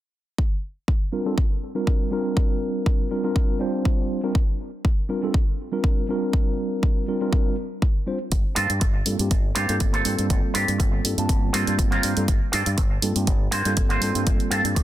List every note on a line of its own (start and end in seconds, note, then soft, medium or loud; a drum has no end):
0.38 kick loud
0.88 kick medium
1.12 1.24 G3 medium
1.12 1.24 C4 medium
1.12 1.24 D4 medium
1.12 1.24 F4 medium
1.12 1.24 A#4 medium
1.26 1.35 G3 medium
1.26 1.35 C4 medium
1.26 1.35 D4 medium
1.26 1.35 F4 medium
1.26 1.35 A4 medium
1.38 kick loud
1.75 2.09 G3 medium
1.75 2.09 C4 medium
1.75 2.09 D4 medium
1.75 2.09 F4 medium
1.75 2.09 A#4 medium
1.87 kick medium
2.11 3.08 G3 medium
2.11 3.08 C4 medium
2.11 3.08 D4 medium
2.11 3.08 F4 medium
2.11 3.09 A#4 medium
2.37 kick loud
2.86 kick loud
3.11 3.22 G3 medium
3.11 3.22 C4 medium
3.11 3.22 D4 medium
3.11 3.23 F4 medium
3.11 3.23 A#4 medium
3.24 3.58 G3 medium
3.24 3.58 C4 medium
3.24 3.58 D4 medium
3.24 3.58 F4 medium
3.24 3.58 A#4 medium
3.36 kick loud
3.59 4.20 G3 medium
3.59 4.20 C4 medium
3.59 4.20 D4 medium
3.59 4.20 F4 medium
3.59 4.21 C5 loud
3.85 kick loud
4.23 4.32 G3 medium
4.23 4.32 C4 medium
4.23 4.32 D4 medium
4.23 4.32 F4 medium
4.23 4.33 A#4 medium
4.35 kick loud
4.85 kick loud
5.09 5.20 G3 medium
5.09 5.21 C4 medium
5.09 5.21 D4 medium
5.09 5.21 F4 medium
5.09 5.21 A#4 medium
5.23 5.31 G3 medium
5.23 5.32 C4 medium
5.23 5.32 D4 medium
5.23 5.32 F4 medium
5.23 5.32 A4 medium
5.34 kick loud
5.72 6.05 G3 medium
5.72 6.06 C4 medium
5.72 6.06 D4 medium
5.72 6.06 F4 medium
5.72 6.06 A#4 medium
5.84 kick loud
6.08 7.05 G3 medium
6.08 7.05 C4 medium
6.08 7.05 D4 medium
6.08 7.06 F4 medium
6.08 7.06 A#4 medium
6.33 kick loud
6.83 kick loud
7.08 7.19 G3 medium
7.08 7.19 C4 medium
7.08 7.19 D4 medium
7.08 7.19 F4 medium
7.08 7.20 A#4 medium
7.21 7.55 G3 medium
7.21 7.55 C4 medium
7.21 7.55 D4 medium
7.21 7.55 F4 medium
7.21 7.55 A#4 medium
7.33 kick loud
7.82 kick loud
8.06 8.17 G3 medium
8.06 8.17 C4 medium
8.06 8.17 D4 medium
8.06 8.17 F4 medium
8.06 8.18 C5 medium
8.32 8.42 G1 medium
8.32 kick loud
8.32 closed hi-hat medium
8.55 8.67 G2 medium
8.55 8.69 A#3 loud
8.55 8.70 C4 medium
8.55 8.70 F4 medium
8.55 8.70 A4 loud
8.55 open hi-hat medium
8.70 8.79 G2 medium
8.70 closed hi-hat soft
8.80 9.01 G1 medium
8.80 muted clean electric guitar stroke medium
8.80 kick loud
8.80 closed hi-hat medium
8.94 muted clean electric guitar stroke soft
9.05 9.17 G2 medium
9.05 9.17 G3 medium
9.05 9.17 A#3 medium
9.05 9.17 C4 medium
9.05 9.17 F4 medium
9.05 9.18 A4 medium
9.05 open hi-hat medium
9.19 9.28 G2 medium
9.19 9.28 G3 medium
9.19 9.28 A#3 medium
9.19 9.28 C4 medium
9.19 9.29 F4 medium
9.19 9.29 G4 medium
9.19 closed hi-hat soft
9.31 9.51 G1 medium
9.31 kick loud
9.31 closed hi-hat medium
9.55 9.66 G2 medium
9.55 9.74 A#3 loud
9.55 9.75 C4 medium
9.55 9.75 F4 medium
9.55 9.75 G4 loud
9.55 open hi-hat loud
9.69 9.78 G2 medium
9.69 10.02 G3 medium
9.69 10.03 A#3 medium
9.69 10.03 C4 medium
9.69 10.03 F4 medium
9.69 10.03 A4 medium
9.69 closed hi-hat soft
9.80 10.00 G1 medium
9.80 kick loud
9.80 closed hi-hat medium
9.93 10.24 A#3 medium
9.93 10.24 C4 medium
9.93 10.25 F4 medium
9.93 10.25 A4 medium
9.93 closed hi-hat soft
10.05 10.16 G2 medium
10.05 11.02 G3 medium
10.05 11.02 A#3 medium
10.05 11.02 C4 medium
10.05 11.02 F4 medium
10.05 11.02 A4 medium
10.05 open hi-hat medium
10.19 10.28 G2 medium
10.19 closed hi-hat soft
10.30 10.41 G1 medium
10.30 kick loud
10.30 closed hi-hat medium
10.54 10.65 G2 medium
10.54 10.68 A#3 loud
10.54 10.68 C4 medium
10.54 10.68 F4 medium
10.54 10.69 G4 loud
10.54 open hi-hat medium
10.68 10.77 G2 medium
10.68 closed hi-hat soft
10.78 10.99 G1 medium
10.78 muted clean electric guitar stroke medium
10.78 kick loud
10.78 closed hi-hat medium
10.92 muted clean electric guitar stroke soft
11.04 11.15 G2 medium
11.04 11.16 G3 medium
11.04 11.16 A#3 medium
11.04 11.16 C4 medium
11.04 11.16 F4 medium
11.04 11.16 A4 medium
11.04 open hi-hat medium
11.18 11.27 G2 medium
11.18 11.51 G3 medium
11.18 11.52 A#3 medium
11.18 11.52 C4 medium
11.18 11.52 F4 medium
11.18 11.52 A5 medium
11.18 closed hi-hat soft
11.29 11.49 G1 medium
11.29 kick loud
11.29 closed hi-hat medium
11.53 11.64 G2 medium
11.53 12.13 G3 medium
11.53 11.73 A#3 loud
11.53 12.14 A#3 medium
11.53 11.73 C4 medium
11.53 12.14 C4 medium
11.53 11.73 F4 medium
11.53 12.14 F4 medium
11.53 11.73 A4 loud
11.53 open hi-hat loud
11.67 11.76 G2 medium
11.67 closed hi-hat soft
11.79 11.99 G1 medium
11.79 kick medium
11.79 closed hi-hat medium
11.91 12.22 A#3 medium
11.91 12.22 C4 medium
11.91 12.23 F4 medium
11.91 12.23 A#4 medium
11.91 closed hi-hat soft
12.03 12.14 G2 medium
12.03 open hi-hat medium
12.17 12.26 G2 medium
12.17 12.26 G3 medium
12.17 12.26 A#3 medium
12.17 12.26 C4 medium
12.17 12.26 F4 medium
12.17 12.26 A4 medium
12.17 closed hi-hat soft
12.28 12.39 G1 medium
12.28 kick loud
12.28 closed hi-hat medium
12.52 12.64 G2 medium
12.52 12.66 A#3 loud
12.52 12.66 C4 loud
12.52 12.67 F4 medium
12.52 12.67 A4 loud
12.52 open hi-hat medium
12.66 12.75 G2 medium
12.66 closed hi-hat medium
12.77 12.98 G1 medium
12.77 muted clean electric guitar stroke medium
12.77 kick loud
12.77 closed hi-hat medium
12.90 muted clean electric guitar stroke soft
13.02 13.13 G2 medium
13.02 13.14 G3 medium
13.02 13.14 A#3 medium
13.02 13.14 C4 medium
13.02 13.14 F4 medium
13.02 13.14 A4 medium
13.02 open hi-hat medium
13.16 13.25 G2 medium
13.16 13.25 G3 medium
13.16 13.25 A#3 medium
13.16 13.25 C4 medium
13.16 13.25 F4 medium
13.16 13.25 G4 medium
13.16 closed hi-hat medium
13.27 13.47 G1 medium
13.27 kick loud
13.27 closed hi-hat medium
13.51 13.63 G2 medium
13.51 13.71 A#3 loud
13.51 13.71 C4 loud
13.51 13.72 F4 medium
13.51 13.72 C5 loud
13.51 open hi-hat medium
13.65 13.74 G2 medium
13.65 13.99 G3 medium
13.65 13.99 A#3 medium
13.65 13.99 C4 medium
13.65 14.00 F4 medium
13.65 14.00 A4 medium
13.65 closed hi-hat soft
13.77 13.97 G1 medium
13.77 kick medium
13.77 closed hi-hat medium
13.89 14.20 A#3 medium
13.89 14.21 C4 medium
13.89 14.21 F4 medium
13.89 14.21 C5 medium
13.89 closed hi-hat soft
14.01 14.12 G2 medium
14.01 14.83 G3 medium
14.01 14.83 A#3 medium
14.01 14.83 C4 medium
14.01 14.83 F4 medium
14.01 14.83 A4 medium
14.01 open hi-hat medium
14.15 14.24 G2 medium
14.15 closed hi-hat medium
14.27 14.37 G1 medium
14.27 kick loud
14.27 closed hi-hat medium
14.40 closed hi-hat soft
14.51 14.62 G2 medium
14.51 14.64 A#3 loud
14.51 14.65 C4 medium
14.51 14.65 F4 medium
14.51 14.65 A4 loud
14.51 open hi-hat medium
14.64 14.74 G2 medium
14.64 closed hi-hat medium
14.75 14.83 G1 medium
14.75 muted clean electric guitar stroke medium
14.75 kick loud
14.75 closed hi-hat medium